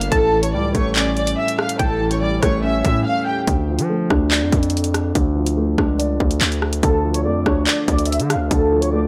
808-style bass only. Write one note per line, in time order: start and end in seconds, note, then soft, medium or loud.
0.00 0.10 G1 loud
0.12 0.55 A1 loud
0.54 0.74 C#2 loud
0.75 1.35 A1 loud
1.80 2.40 A1 loud
2.43 2.83 A1 loud
2.85 3.05 A2 loud
3.47 3.80 D2 loud
3.79 4.09 F3 loud
4.10 4.43 D2 loud
4.42 4.52 F2 loud
4.52 5.13 F2 loud
5.15 5.76 D2 loud
5.78 6.19 C#2 loud
6.20 6.40 D2 loud
6.41 6.81 D2 loud
6.83 7.27 D2 loud
7.25 7.45 F2 loud
7.46 7.66 D2 loud
7.88 8.21 D2 loud
8.19 8.37 D3 loud
8.35 8.50 D2 loud
8.51 9.07 D2 loud